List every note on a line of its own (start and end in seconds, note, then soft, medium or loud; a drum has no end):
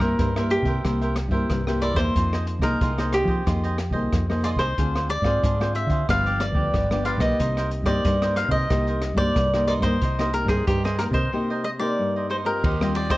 0.00 0.13 G2 medium
0.00 0.15 C3 medium
0.00 0.28 A#3 medium
0.00 0.29 E4 medium
0.00 0.29 G4 medium
0.00 0.53 A#4 medium
0.00 0.17 A#4 soft
0.00 0.16 C5 medium
0.00 0.16 E5 medium
0.00 kick medium
0.00 cross-stick medium
0.18 0.81 G2 medium
0.18 0.61 G2 medium
0.18 0.34 E4 soft
0.18 0.34 A#4 soft
0.18 0.34 C5 medium
0.18 0.35 E5 soft
0.18 kick medium
0.18 closed hi-hat medium
0.36 0.79 A#3 medium
0.36 0.80 E4 soft
0.36 0.80 G4 medium
0.36 0.66 A#4 medium
0.36 0.65 C5 medium
0.36 0.64 E5 medium
0.36 cross-stick medium
0.50 1.78 G4 medium
0.50 closed hi-hat soft
0.62 0.79 C3 medium
0.62 0.82 E5 medium
0.62 kick medium
0.62 closed hi-hat soft
0.67 0.83 A#4 soft
0.67 0.82 C5 medium
0.84 1.26 C2 loud
0.84 1.47 C3 medium
0.84 1.15 A#3 medium
0.84 0.99 E4 soft
0.84 1.15 E4 soft
0.84 1.15 G4 medium
0.84 1.00 A#4 soft
0.84 1.00 C5 soft
0.84 1.00 E5 medium
0.84 kick medium
0.84 cross-stick medium
0.84 closed hi-hat medium
1.01 1.15 A#4 medium
1.01 1.15 C5 medium
1.01 1.15 E5 medium
1.01 closed hi-hat soft
1.16 muted cavaquinho stroke soft
1.16 cross-stick medium
1.16 closed hi-hat soft
1.28 1.44 G2 medium
1.28 1.60 A#3 medium
1.28 1.60 E4 medium
1.28 1.60 G4 medium
1.28 1.64 C5 medium
1.28 1.64 E5 medium
1.28 kick medium
1.33 1.65 A#4 medium
1.50 1.92 C2 medium
1.50 2.12 G2 medium
1.50 kick medium
1.50 cross-stick medium
1.50 closed hi-hat soft
1.67 1.95 A#3 medium
1.67 1.95 E4 medium
1.67 1.95 G4 medium
1.67 1.81 A#4 soft
1.67 1.81 C5 soft
1.67 1.81 E5 soft
1.67 cross-stick medium
1.81 1.97 E4 medium
1.81 1.97 A#4 medium
1.81 1.96 C5 medium
1.81 1.99 D5 medium
1.81 1.95 E5 medium
1.81 closed hi-hat soft
1.94 2.10 E2 medium
1.94 2.58 A#3 medium
1.94 2.58 D#4 medium
1.94 2.59 G#4 medium
1.94 2.65 C5 medium
1.94 2.13 C5 medium
1.94 2.13 E5 medium
1.94 kick medium
1.94 cross-stick medium
1.94 closed hi-hat soft
1.98 2.14 A#4 soft
2.15 2.58 F2 medium
2.15 2.78 F3 medium
2.15 2.31 F4 soft
2.15 2.31 G#4 soft
2.15 2.31 C5 medium
2.15 2.31 D#5 soft
2.15 kick medium
2.15 closed hi-hat medium
2.33 2.46 G#4 soft
2.33 2.46 C5 medium
2.33 2.46 D#5 medium
2.33 cross-stick medium
2.33 closed hi-hat soft
2.47 muted cavaquinho stroke soft
2.47 closed hi-hat soft
2.59 2.75 C2 medium
2.59 2.91 A#3 medium
2.59 2.91 D#4 medium
2.59 2.91 G#4 medium
2.59 2.79 G#4 medium
2.59 2.79 C5 medium
2.59 2.78 D#5 medium
2.59 kick medium
2.59 cross-stick medium
2.59 closed hi-hat soft
2.63 3.15 A#4 medium
2.81 3.23 C2 medium
2.81 3.43 C3 medium
2.81 2.96 F4 soft
2.81 2.96 G#4 soft
2.81 2.97 C5 medium
2.81 2.97 D#5 soft
2.81 kick medium
2.81 closed hi-hat medium
2.98 3.42 A#3 soft
2.98 3.42 D#4 medium
2.98 3.42 G#4 medium
2.98 3.28 G#4 medium
2.98 3.27 C5 medium
2.98 3.26 D#5 medium
2.98 cross-stick medium
2.98 closed hi-hat soft
3.13 4.49 G4 medium
3.13 cross-stick medium
3.13 closed hi-hat soft
3.25 3.41 F3 medium
3.25 3.45 G#4 soft
3.25 3.44 C5 medium
3.25 3.44 D#5 medium
3.25 kick medium
3.46 3.89 F2 medium
3.46 4.09 F3 medium
3.46 3.77 A#3 medium
3.46 3.77 D#4 medium
3.46 3.61 F4 soft
3.46 3.62 G#4 soft
3.46 3.62 C5 soft
3.46 3.62 D#5 soft
3.46 kick medium
3.46 cross-stick medium
3.46 closed hi-hat medium
3.63 3.77 G#4 soft
3.63 3.77 C5 medium
3.63 3.77 D#5 medium
3.63 closed hi-hat soft
3.78 muted cavaquinho stroke soft
3.78 cross-stick medium
3.78 closed hi-hat soft
3.91 4.07 C2 medium
3.91 4.22 A#3 medium
3.91 4.22 D#4 medium
3.91 4.22 G#4 medium
3.91 4.26 C5 medium
3.91 4.25 D#5 medium
3.91 kick medium
4.12 4.54 F2 medium
4.12 4.74 C3 medium
4.12 kick medium
4.12 cross-stick medium
4.12 closed hi-hat medium
4.29 4.73 A#3 medium
4.29 4.73 D#4 medium
4.29 4.73 G#4 medium
4.29 4.43 G#4 soft
4.29 4.43 C5 soft
4.29 4.44 D#5 medium
4.29 cross-stick medium
4.29 closed hi-hat soft
4.44 4.59 F4 medium
4.44 4.59 G#4 medium
4.44 4.58 C5 medium
4.44 4.49 D5 medium
4.44 4.57 D#5 medium
4.44 closed hi-hat medium
4.56 4.72 C2 medium
4.56 4.76 G#4 soft
4.56 5.06 C5 medium
4.56 4.75 C5 medium
4.56 4.75 D#5 medium
4.56 kick medium
4.56 cross-stick medium
4.56 closed hi-hat soft
4.78 5.20 D2 medium
4.78 5.40 D3 medium
4.78 5.09 C4 medium
4.78 4.93 D4 soft
4.78 5.09 F4 medium
4.78 4.93 G#4 medium
4.78 5.09 G#4 medium
4.78 4.94 C5 medium
4.78 4.94 F5 medium
4.78 kick medium
4.78 closed hi-hat medium
4.95 5.08 G#4 medium
4.95 5.08 C5 medium
4.95 5.08 F5 medium
4.95 cross-stick medium
4.95 closed hi-hat soft
5.09 5.72 D5 medium
5.09 muted cavaquinho stroke soft
5.09 closed hi-hat soft
5.22 5.38 G#2 medium
5.22 5.53 C4 medium
5.22 5.53 F4 medium
5.22 5.54 G#4 medium
5.22 5.41 C5 medium
5.22 5.41 F5 medium
5.22 kick medium
5.22 cross-stick medium
5.26 5.41 G#4 medium
5.43 5.85 G#2 medium
5.43 6.05 D3 medium
5.43 5.59 D4 soft
5.43 5.59 G#4 soft
5.43 5.59 C5 medium
5.43 5.59 F5 medium
5.43 kick medium
5.43 closed hi-hat medium
5.60 6.04 C4 medium
5.60 6.04 F4 medium
5.60 6.04 G#4 medium
5.60 5.90 G#4 medium
5.60 5.89 C5 medium
5.60 5.88 F5 medium
5.60 cross-stick medium
5.75 6.06 E5 medium
5.75 closed hi-hat soft
5.87 6.03 D3 medium
5.87 6.07 C5 medium
5.87 6.06 F5 medium
5.87 kick medium
5.87 closed hi-hat soft
5.91 6.07 G#4 medium
6.09 6.51 G1 medium
6.09 6.71 G2 medium
6.09 6.53 F3 medium
6.09 6.53 B3 medium
6.09 6.53 D4 medium
6.09 6.24 F4 soft
6.09 6.24 G4 soft
6.09 6.25 B4 soft
6.09 6.25 D5 soft
6.09 6.43 F5 loud
6.09 kick medium
6.09 cross-stick medium
6.09 closed hi-hat medium
6.26 6.39 G4 medium
6.26 6.39 B4 medium
6.26 6.39 D5 medium
6.26 closed hi-hat soft
6.40 7.03 D5 medium
6.40 muted cavaquinho stroke soft
6.40 cross-stick medium
6.40 closed hi-hat soft
6.52 6.69 D2 medium
6.52 6.84 F3 medium
6.52 6.84 B3 medium
6.52 6.84 D4 medium
6.52 6.89 G4 medium
6.52 6.88 B4 medium
6.52 6.88 D5 medium
6.52 kick medium
6.73 7.16 G1 medium
6.73 7.36 D3 medium
6.73 kick medium
6.73 cross-stick medium
6.73 closed hi-hat medium
6.90 7.18 F3 medium
6.90 7.19 B3 medium
6.90 7.19 D4 medium
6.90 7.05 G4 soft
6.90 7.05 B4 soft
6.90 7.06 D5 medium
6.90 cross-stick medium
7.05 7.21 F4 medium
7.05 7.20 G4 medium
7.05 7.19 B4 medium
7.05 7.18 D5 medium
7.05 7.10 F5 medium
7.05 closed hi-hat soft
7.18 7.34 B1 medium
7.18 7.82 A#3 medium
7.18 7.82 D#4 medium
7.18 7.82 G4 medium
7.18 7.37 G4 soft
7.18 7.37 B4 medium
7.18 7.37 D5 medium
7.18 7.90 D#5 medium
7.18 kick medium
7.18 cross-stick medium
7.18 closed hi-hat soft
7.39 7.82 C2 medium
7.39 8.02 C3 medium
7.39 7.55 D#4 soft
7.39 7.55 A#4 soft
7.39 7.55 C5 medium
7.39 7.56 D#5 medium
7.39 kick medium
7.39 closed hi-hat medium
7.57 7.70 A#4 medium
7.57 7.71 C5 medium
7.57 7.71 D#5 medium
7.57 cross-stick medium
7.57 closed hi-hat soft
7.71 muted cavaquinho stroke soft
7.71 closed hi-hat soft
7.83 8.00 G2 medium
7.83 8.15 A#3 medium
7.83 8.15 D#4 medium
7.83 8.15 G4 medium
7.83 8.03 A#4 medium
7.83 8.03 C5 medium
7.83 8.38 D5 medium
7.83 8.02 D#5 medium
7.83 kick medium
7.83 cross-stick medium
7.83 closed hi-hat soft
8.04 8.67 G2 medium
8.04 8.47 G2 loud
8.04 8.20 D#4 soft
8.04 8.20 A#4 soft
8.04 8.20 C5 medium
8.04 8.21 D#5 medium
8.04 kick medium
8.04 closed hi-hat medium
8.22 8.66 A#3 medium
8.22 8.66 D#4 medium
8.22 8.66 G4 medium
8.22 8.51 A#4 medium
8.22 8.50 C5 medium
8.22 8.50 D#5 medium
8.22 cross-stick medium
8.22 closed hi-hat soft
8.36 8.51 F5 medium
8.36 cross-stick medium
8.36 closed hi-hat soft
8.48 8.65 C3 medium
8.48 8.68 A#4 medium
8.48 8.68 C5 medium
8.48 8.68 D#5 medium
8.48 9.15 D#5 medium
8.48 kick medium
8.70 9.12 C2 loud
8.70 9.33 C3 medium
8.70 9.14 A#3 medium
8.70 8.86 D#4 soft
8.70 9.15 D#4 medium
8.70 9.15 G4 medium
8.70 8.86 A#4 soft
8.70 8.86 C5 medium
8.70 8.86 D#5 soft
8.70 kick medium
8.70 cross-stick medium
8.70 closed hi-hat medium
8.87 9.01 A#4 soft
8.87 9.01 C5 medium
8.87 9.01 D#5 medium
8.87 closed hi-hat soft
9.02 muted cavaquinho stroke soft
9.02 cross-stick medium
9.02 closed hi-hat soft
9.14 9.31 G2 medium
9.14 9.46 A#3 medium
9.14 9.46 D#4 medium
9.14 9.46 G4 medium
9.14 9.50 C5 medium
9.14 9.66 D5 loud
9.14 kick medium
9.19 9.51 A#4 medium
9.36 9.78 C2 medium
9.36 9.98 G2 medium
9.36 kick medium
9.36 cross-stick medium
9.36 closed hi-hat medium
9.53 9.81 A#3 medium
9.53 9.81 D#4 medium
9.53 9.81 G4 medium
9.53 9.67 A#4 soft
9.53 9.68 C5 soft
9.53 9.68 D#5 medium
9.53 cross-stick medium
9.53 closed hi-hat soft
9.67 9.84 D#4 medium
9.67 9.84 A#4 medium
9.67 9.83 C5 medium
9.67 9.72 D5 medium
9.67 9.82 D#5 medium
9.67 closed hi-hat medium
9.80 9.96 G2 medium
9.80 9.95 A#3 medium
9.80 9.95 D#4 medium
9.80 9.95 G4 medium
9.80 10.35 C5 medium
9.80 10.00 D#5 medium
9.80 kick medium
9.80 cross-stick medium
9.80 closed hi-hat soft
9.84 10.00 A#4 soft
9.84 10.00 C5 medium
10.01 10.44 C2 medium
10.01 10.64 C3 medium
10.01 10.17 D#4 soft
10.01 10.17 A#4 soft
10.01 10.18 C5 medium
10.01 10.17 D#5 medium
10.01 kick medium
10.01 closed hi-hat medium
10.18 10.29 A#3 medium
10.18 10.30 D#4 medium
10.18 10.30 G4 medium
10.18 10.32 A#4 medium
10.18 10.33 C5 medium
10.18 10.33 D#5 medium
10.18 cross-stick medium
10.18 closed hi-hat soft
10.33 10.76 A#3 medium
10.33 10.76 D#4 medium
10.33 10.77 G4 medium
10.33 10.48 A#4 medium
10.33 muted cavaquinho stroke soft
10.33 closed hi-hat soft
10.45 10.62 G2 medium
10.45 10.65 G#4 medium
10.45 10.65 C5 medium
10.45 10.64 D#5 medium
10.45 kick medium
10.45 cross-stick medium
10.49 10.65 A#4 soft
10.67 11.30 G2 medium
10.67 11.09 G2 loud
10.67 10.82 D#4 soft
10.67 10.82 G4 medium
10.67 10.83 A#4 soft
10.67 10.83 C5 medium
10.67 10.83 D#5 medium
10.67 kick medium
10.67 closed hi-hat medium
10.84 10.98 G#4 medium
10.84 11.14 A#4 medium
10.84 11.13 C5 medium
10.84 11.12 D#5 medium
10.84 cross-stick medium
10.98 11.18 A#3 medium
10.98 11.19 D#4 medium
10.98 11.19 G4 medium
10.98 11.04 A#4 medium
10.98 cross-stick medium
10.98 closed hi-hat medium
11.11 11.27 C3 medium
11.11 11.31 A#4 medium
11.11 12.26 C5 medium
11.11 11.30 C5 medium
11.11 11.30 D#5 medium
11.11 kick medium
11.11 closed hi-hat soft
11.32 11.95 C3 medium
11.32 11.63 A#3 medium
11.32 11.48 D#4 soft
11.32 11.64 D#4 medium
11.32 11.64 G4 medium
11.32 11.48 A#4 soft
11.32 11.48 C5 soft
11.32 11.49 D#5 medium
11.50 11.63 A#4 soft
11.50 11.64 C5 medium
11.50 11.64 D#5 medium
11.64 11.69 D#5 medium
11.64 muted cavaquinho stroke soft
11.79 12.40 A#3 medium
11.79 12.41 D#4 medium
11.79 12.41 G4 medium
11.79 12.13 A#4 medium
11.79 12.13 C5 medium
11.79 12.26 D5 medium
11.98 12.60 G2 medium
12.16 12.29 A#4 soft
12.16 12.30 C5 soft
12.16 12.30 D#5 soft
12.30 12.45 D#4 medium
12.30 12.46 A#4 medium
12.30 12.35 C5 medium
12.30 12.45 C5 medium
12.30 12.44 D#5 medium
12.45 12.73 C4 medium
12.45 12.74 F4 medium
12.45 12.74 G4 medium
12.45 12.92 A#4 medium
12.45 12.62 A#4 medium
12.45 12.62 C5 medium
12.45 12.61 D#5 medium
12.64 13.18 D#2 loud
12.64 13.18 D#3 medium
12.64 12.79 D#4 soft
12.64 12.79 G4 medium
12.64 12.79 C5 medium
12.64 12.80 D#5 medium
12.64 kick medium
12.64 ride soft
12.80 13.18 G3 medium
12.80 13.18 C4 medium
12.80 13.18 F4 medium
12.80 13.11 G4 medium
12.80 13.10 C5 medium
12.80 13.09 D#5 medium
12.80 cross-stick medium
12.95 13.13 D5 medium
12.95 ride soft
13.10 13.18 G4 medium
13.10 13.18 C5 medium
13.10 13.18 D#5 medium
13.10 kick medium
13.10 cross-stick medium
13.10 ride soft